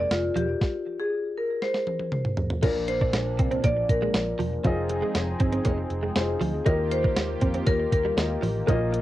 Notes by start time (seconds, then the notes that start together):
Already playing: G#3 A#3 C4 D#4 G#4 C5
0.11 F1 F4, snare, closed hi-hat
0.36 E1 F3 G4, closed hi-hat
0.62 kick, snare
1.00 G#4
1.38 A#4
1.62 C5, snare
1.74 snare
1.87 high tom
2.00 high tom
2.12 mid tom
2.25 mid tom
2.37 floor tom
2.50 floor tom
2.62 A#1 A#2 F3 A#3 D4 F4 A#4 D5, kick, closed hi-hat, crash, cowbell
2.88 C5, muted clean electric guitar stroke, closed hi-hat
3.01 D4, kick
3.13 A#1, muted clean electric guitar stroke, snare, closed hi-hat, cowbell
3.39 C2 C4, kick, closed hi-hat
3.51 C4, closed hi-hat
3.64 A#1 A#3 D5, kick, closed hi-hat, cowbell
3.77 muted clean electric guitar stroke
3.89 A#1 A#4, kick, closed hi-hat
4.02 G#3
4.14 A#1, snare, closed hi-hat, cowbell
4.39 E1 F3, open hi-hat
4.64 F1 F3 C4 D#4 F4 G#4 D#5, kick, closed hi-hat, cowbell
4.90 muted clean electric guitar stroke, closed hi-hat
5.02 G#3
5.15 F1, muted clean electric guitar stroke, snare, closed hi-hat, cowbell
5.40 G1 C4, kick, closed hi-hat
5.53 C4, closed hi-hat
5.65 F1 A#3, kick, closed hi-hat, cowbell
5.78 muted clean electric guitar stroke
5.90 F1, closed hi-hat
6.03 G#3
6.15 F1 C4 F4 G#4 C5, snare, closed hi-hat, cowbell
6.41 D2 F3, open hi-hat
6.65 D#2 D#3 A#3 D#4 F4 G4 A#4 D#5, kick, closed hi-hat, cowbell
6.91 C5, muted clean electric guitar stroke, closed hi-hat
7.04 A#3, kick
7.16 D#2, muted clean electric guitar stroke, snare, closed hi-hat, cowbell
7.41 F2 C4, kick, closed hi-hat
7.54 C4, closed hi-hat
7.66 D#2 A#3 A#4, kick, closed hi-hat, cowbell
7.80 muted clean electric guitar stroke
7.92 D#2 A#4, kick, closed hi-hat
8.05 G3
8.17 D#2 A#3 F4 G4 D#5, snare, closed hi-hat, cowbell
8.42 A1 F3, open hi-hat
8.67 A#1 A#2 F3 A#3 D#4 F4 D#5, kick, closed hi-hat, cowbell
8.92 muted clean electric guitar stroke, closed hi-hat